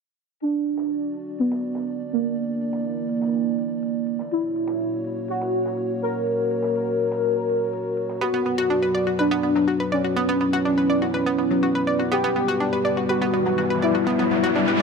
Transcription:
0.40 D4 F#4 D5, ride
0.66 ride
0.78 snare
0.90 ride
1.02 ride
1.14 ride
1.26 ride
1.38 B3, ride
1.52 snare
1.62 ride
1.75 snare
1.87 ride
2.00 ride
2.12 A#3, ride
2.24 ride
2.35 E4, ride
2.61 ride
2.73 snare
2.84 ride
3.09 ride
3.22 snare
3.34 open hi-hat
3.58 ride
3.83 ride
4.06 ride
4.19 snare
4.31 A#3 E4 F#4 C#5, ride
4.56 ride
4.67 snare
4.80 ride
4.92 ride
5.04 ride
5.16 ride
5.28 F#4, ride
5.41 snare
5.53 ride
5.66 snare
5.77 ride
5.89 ride
6.02 A#4, ride
6.13 ride
6.26 ride
6.51 ride
6.63 snare
6.75 ride
7.00 ride
7.12 snare
7.24 open hi-hat
7.49 ride
7.73 ride
7.97 ride
8.09 snare
8.21 F#3 B3 F#4 B4
8.34 B3
8.46 B3, ride
8.58 F#4, snare
8.70 D4
8.83 B4
8.94 D5, ride
9.07 F#4
9.19 D4 B4, ride
9.31 B3, snare
9.43 B3, ride
9.56 F#3, snare
9.68 F#4
9.80 B4
9.92 C#4 D5, ride
10.04 F#4
10.16 B3 E4, ride
10.29 B3
10.41 B3
10.53 F#4, snare
10.65 D4, ride
10.78 B4
10.90 D5, ride
11.02 F#4, snare
11.14 B4, open hi-hat
11.26 B3
11.38 B3, ride
11.51 F#3
11.63 F#4
11.75 B4
11.87 D5, ride
11.99 F#4, snare
12.12 G3 B3 G4, riser
12.24 B3
12.36 B3, ride
12.48 F#4, snare
12.60 D4, ride
12.73 B4
12.85 D5, ride
12.97 F#4, ride
13.09 F#4 B4
13.22 B3, snare
13.34 B3
13.46 F#3, snare
13.58 F#4, snare, ride
13.70 B4
13.81 E4 D5, snare, ride
13.95 F#4
14.07 B3, ride
14.19 B3, snare, ride
14.31 B3
14.44 F#4
14.55 D4, ride
14.68 B4

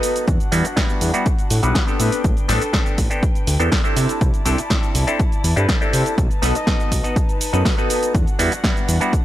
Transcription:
Already playing: B3 D#4 F#4 A4 B4 A5
0.03 open hi-hat, shaker
0.16 closed hi-hat, shaker
0.28 E2 D4 F#4 F#5, kick, closed hi-hat, shaker
0.40 closed hi-hat, shaker
0.52 E2 G3 B3 D4 E4 F#4, open hi-hat, shaker
0.65 closed hi-hat, shaker
0.76 G3 B3 D4 E4 F#4, kick, snare, closed hi-hat, shaker
0.89 closed hi-hat, shaker
1.01 E2, open hi-hat, shaker
1.14 G3 B3 D4 E4 F#4, closed hi-hat, shaker
1.26 kick, closed hi-hat, shaker
1.39 closed hi-hat, shaker
1.50 A2, open hi-hat, shaker
1.63 B1 G3 B3 D4 E4 F#4 B4, closed hi-hat, shaker
1.75 G3 B3 D4 E4 F#4, kick, snare, closed hi-hat, shaker
1.87 B3 C4 D4 G4 A4, closed hi-hat, shaker
2.00 A2 B4 G5, open hi-hat, shaker
2.12 closed hi-hat, shaker
2.24 A1, kick, closed hi-hat, shaker
2.37 closed hi-hat, shaker
2.48 A1 B3 C4 D4 G4 A4, snare, open hi-hat, shaker
2.62 closed hi-hat, shaker
2.73 B3 C4 D4 G4 A4, kick, snare, closed hi-hat, shaker
2.86 closed hi-hat, shaker
2.98 A1, kick, open hi-hat, shaker
3.10 B3 C4 D4 G4 A4, closed hi-hat, shaker
3.23 kick, closed hi-hat, shaker
3.35 closed hi-hat, shaker
3.47 D2, open hi-hat, shaker
3.60 E2 B3 C4 D4 G4 A4, closed hi-hat, shaker
3.72 B3 C4 D4 G4 A4, kick, snare, open hi-hat, shaker
3.84 C4 D4 E4 G4 A4, closed hi-hat, shaker
3.97 C3 E4 D5 A5, open hi-hat, shaker
4.09 closed hi-hat, shaker
4.21 C2, kick, closed hi-hat, shaker
4.34 closed hi-hat, shaker
4.45 C2 C4 D4 E4 G4 A4, open hi-hat, shaker
4.58 closed hi-hat, shaker
4.70 C4 D4 E4 G4 A4, kick, snare, closed hi-hat, shaker
4.83 closed hi-hat, shaker
4.95 C2, open hi-hat, shaker
5.07 C4 D4 E4 G4 A4, closed hi-hat, shaker
5.20 kick, closed hi-hat, shaker
5.32 closed hi-hat, shaker
5.44 E2, open hi-hat, shaker
5.56 G2 C4 D4 E4 G4 A4 B4, closed hi-hat, shaker
5.68 C4 D4 E4 G4 A4, kick, snare, closed hi-hat, shaker
5.81 C4 D4 E4 G4 A4, closed hi-hat, shaker
5.93 C3, open hi-hat, shaker
6.06 closed hi-hat, shaker
6.18 B1 D#4 B4, kick, closed hi-hat, shaker
6.31 closed hi-hat, shaker
6.42 B1 B3 D#4 F#4 A4 B4, snare, open hi-hat, shaker
6.55 D#5, closed hi-hat, shaker
6.67 B3 D#4 F#4 A4 B4, kick, snare, closed hi-hat, shaker
6.80 closed hi-hat, shaker
6.92 B1, kick, open hi-hat, shaker
7.04 B3 D#4 F#4 A4 B4, closed hi-hat, shaker
7.16 kick, closed hi-hat, shaker
7.29 closed hi-hat, shaker
7.41 open hi-hat, shaker
7.53 F#2 B3 D#4 F#4 A4 B4, closed hi-hat, shaker
7.65 B3 D#4 F#4 A4 B4, kick, snare, open hi-hat, shaker
7.78 B3 D#4 F#4 A4 B4, closed hi-hat, shaker
7.90 open hi-hat, shaker
8.03 closed hi-hat, shaker
8.15 E2 D4 F#4 F#5, kick, closed hi-hat, shaker
8.27 closed hi-hat, shaker
8.39 E2 G3 B3 D4 E4 F#4, open hi-hat, shaker
8.52 closed hi-hat, shaker
8.64 G3 B3 D4 E4 F#4, kick, snare, closed hi-hat, shaker
8.77 closed hi-hat, shaker
8.89 E2, open hi-hat, shaker
9.01 G3 B3 D4 E4 F#4, closed hi-hat, shaker
9.13 kick, closed hi-hat, shaker

